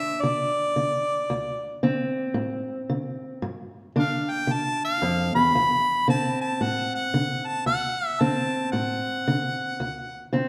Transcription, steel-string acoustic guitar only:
0.00 0.19 D3 medium
0.00 1.83 D4 medium
0.23 0.72 D3 medium
0.76 1.25 D3 medium
1.30 1.79 D2 medium
1.83 2.32 D3 medium
1.83 3.40 C4 medium
2.34 2.84 A2 medium
2.90 3.39 D3 medium
3.42 3.92 G2 medium
3.96 4.45 D3 medium
3.96 6.08 D4 medium
4.47 4.97 D3 medium
5.02 5.35 F2 medium
5.35 5.55 E2 medium
5.55 6.04 D2 medium
6.08 6.57 D3 medium
6.08 7.69 C4 medium
6.61 7.10 A2 medium
7.14 7.63 D3 medium
7.66 8.16 D2 medium
8.21 8.70 D3 medium
8.21 9.78 C4 medium
8.73 9.23 A2 medium
9.28 9.76 D3 medium
9.80 10.29 D2 medium
10.33 10.49 D3 medium
10.33 10.49 C4 medium

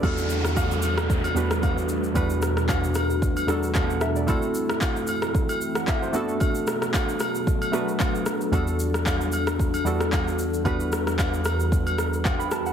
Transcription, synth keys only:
0.00 0.88 E2 medium
0.00 0.89 G3 medium
0.00 0.89 B3 medium
0.00 0.89 D4 medium
0.00 0.17 D5 medium
0.04 0.89 F#4 medium
0.04 0.90 A4 medium
1.35 2.00 E2 medium
1.35 2.00 G3 medium
1.35 2.01 B3 medium
1.35 2.01 D4 medium
1.35 2.01 F#4 medium
1.35 2.02 B4 medium
2.14 3.00 E2 medium
2.14 3.01 G3 medium
2.14 3.01 B3 medium
2.14 3.01 D4 medium
2.14 3.02 F#4 medium
2.14 3.02 B4 medium
3.47 4.13 E2 medium
3.47 4.13 G3 medium
3.47 4.13 B3 medium
3.47 4.13 D4 medium
3.47 4.14 F#4 medium
3.47 4.14 A4 medium
3.75 3.89 A5 medium
3.90 4.01 F#5 medium
4.01 4.16 E5 medium
4.16 4.42 D5 medium
4.27 5.13 A3 medium
4.27 5.13 C4 medium
4.27 5.14 E4 medium
4.27 5.14 F#4 medium
4.27 5.14 A4 medium
5.76 5.87 F#5 medium
5.88 6.02 E5 medium
6.02 6.28 C5 medium
6.13 6.99 A3 medium
6.13 6.99 B3 medium
6.13 7.00 D4 medium
6.13 7.00 F#4 medium
6.13 7.00 A4 loud
7.72 8.37 A3 medium
7.72 8.38 B3 medium
7.72 8.38 D4 medium
7.72 8.39 F#4 medium
7.72 8.39 B4 medium
8.51 9.38 E2 medium
8.51 9.38 G3 medium
8.51 9.38 B3 medium
8.51 9.39 D4 medium
8.51 9.39 F#4 medium
8.51 9.39 A4 medium
9.84 10.50 E2 medium
9.84 10.50 G3 medium
9.84 10.50 B3 medium
9.84 10.51 D4 medium
9.84 10.51 F#4 medium
9.84 10.51 A4 medium
10.64 11.50 E2 medium
10.64 11.51 G3 medium
10.64 11.51 B3 medium
10.64 11.51 D4 medium
10.64 11.51 F#4 medium
10.64 11.52 B4 medium
12.25 12.39 G5 medium
12.39 12.51 B5 medium
12.52 12.65 A5 medium
12.66 12.73 F#5 medium

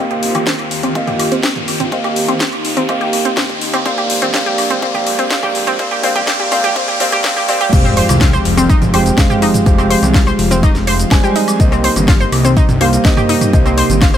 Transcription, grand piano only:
0.00 0.93 A#3 medium
0.00 0.93 G4 medium
0.00 0.93 D#5 medium
0.00 0.93 F5 medium
0.95 1.90 A#3 medium
0.95 1.90 G4 medium
0.95 1.90 D#5 medium
0.95 1.90 F5 medium
1.92 2.87 A#3 medium
1.92 2.87 G4 medium
1.92 2.87 D#5 medium
1.92 2.87 F5 medium
2.89 3.84 A#3 medium
2.89 3.84 G4 medium
2.89 3.84 D#5 medium
2.89 3.84 F5 medium
3.86 4.32 A#3 medium
3.86 4.32 G4 medium
3.86 4.32 D5 medium
3.86 4.32 F5 medium
4.34 4.81 A#3 medium
4.34 4.81 G4 medium
4.34 4.81 D5 medium
4.34 4.81 F5 medium
4.82 5.29 A#3 medium
4.82 5.29 G4 medium
4.82 5.29 D5 medium
4.82 5.29 F5 medium
5.31 5.77 A#3 medium
5.31 5.77 G4 medium
5.31 5.77 D5 medium
5.31 5.77 F5 loud
5.79 6.02 A#3 medium
5.79 6.01 G4 medium
5.79 6.02 D5 medium
5.79 6.01 F5 medium
6.03 6.26 A#3 medium
6.03 6.26 G4 medium
6.03 6.26 D5 medium
6.03 6.26 F5 medium
6.28 6.50 A#3 medium
6.28 6.50 G4 medium
6.28 6.50 D5 medium
6.28 6.50 F5 medium
6.52 6.74 A#3 medium
6.52 6.74 G4 medium
6.52 6.74 D5 medium
6.52 6.74 F5 medium
6.76 6.98 A#3 medium
6.76 6.98 G4 medium
6.76 6.98 D5 medium
6.76 6.98 F5 medium
7.00 7.22 A#3 medium
7.00 7.22 G4 medium
7.00 7.22 D5 medium
7.00 7.22 F5 loud
7.24 7.47 A#3 medium
7.24 7.47 G4 medium
7.24 7.47 D5 medium
7.49 7.71 A#3 medium
7.49 7.71 G4 medium
7.49 7.71 D5 medium
7.49 7.71 F5 loud
7.73 8.91 G#3 medium
7.73 8.91 G4 medium
7.73 8.91 C5 medium
7.73 8.91 F5 medium
8.94 9.15 G#3 medium
8.94 9.15 G4 medium
8.94 9.15 C5 medium
8.94 9.15 G5 medium
9.18 9.63 G#3 medium
9.18 9.63 G4 medium
9.18 9.63 C5 medium
9.18 9.63 F5 loud
9.66 11.09 G#3 medium
9.66 11.09 G4 medium
9.66 11.09 C5 medium
9.66 11.09 F5 loud
11.12 11.57 G3 medium
11.12 11.57 G#3 loud
11.12 11.57 C5 medium
11.12 11.57 G#5 loud
11.60 12.78 A#3 medium
11.60 12.78 G4 medium
11.60 12.78 C5 medium
11.60 12.78 D#5 loud
12.81 13.02 A#3 medium
12.81 13.02 G4 medium
12.81 13.02 C5 medium
12.81 13.02 F5 medium
13.05 13.51 A#3 medium
13.05 13.51 G4 medium
13.05 13.51 C5 medium
13.05 13.51 D#5 loud
13.53 14.18 A#3 medium
13.53 14.18 G4 medium
13.53 14.18 C5 medium
13.53 14.18 D#5 loud

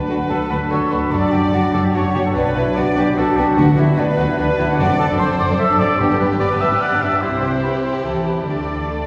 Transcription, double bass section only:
0.09 0.17 D2 soft
0.30 0.38 D2 medium
0.51 0.59 D2 medium
0.72 0.80 D2 medium
0.92 1.00 D2 medium
1.12 1.20 F#1 medium
1.33 1.41 F#1 medium
1.53 1.61 F#1 medium
1.74 1.82 F#1 medium
1.95 2.03 F#1 medium
2.15 2.23 F#1 medium
2.36 2.44 B1 medium
2.57 2.65 B1 medium
2.76 2.84 B1 medium
2.97 3.05 B1 medium
3.17 3.25 B1 medium
3.38 3.46 B1 medium
3.58 3.66 D2 medium
3.78 3.86 D2 medium
3.98 4.06 D2 medium
4.18 4.26 D2 medium
4.39 4.47 D2 medium
4.59 4.67 D2 medium
4.79 4.83 F#1 medium
4.99 5.03 F#1 medium
5.19 5.23 F#1 soft
5.40 5.44 F#1 medium
5.80 5.84 F#1 medium
6.00 6.04 G1 medium
6.21 6.25 G1 medium
6.41 6.45 G1 soft
6.62 6.66 G1 medium
7.03 7.07 G1 soft
7.23 8.01 C2 medium
8.05 8.46 E2 soft
8.47 9.07 D2 soft

